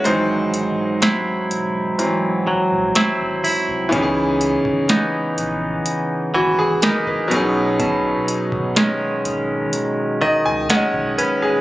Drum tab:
HH |x-x-x-x-x---x-o-|x-x-x-x-x---x-x-|x-x-x-x-x---x-x-|
SD |----o-------o---|----o-------o---|----o-------o---|
BD |----------------|o--o---------o--|o--o---------o--|